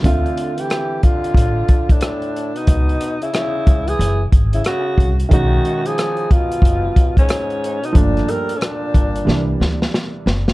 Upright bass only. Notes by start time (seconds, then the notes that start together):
0.04 D2
1.34 A1
2.68 C#2
3.67 C#2
3.99 F#1
4.32 G#1
4.98 C2
5.32 B1
6.62 F#1
7.95 G1
8.95 G1
9.27 C2
9.60 D2
10.26 F#1